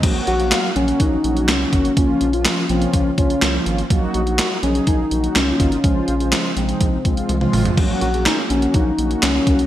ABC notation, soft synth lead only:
X:1
M:4/4
L:1/16
Q:1/4=124
K:Gblyd
V:1 name="Soft synth lead"
z2 G4 D2 E4 D4 | D3 F3 C2 D2 D4 z2 | z2 G4 D2 E4 D4 | D6 C8 z2 |
z2 G2 E2 D2 E4 D4 |]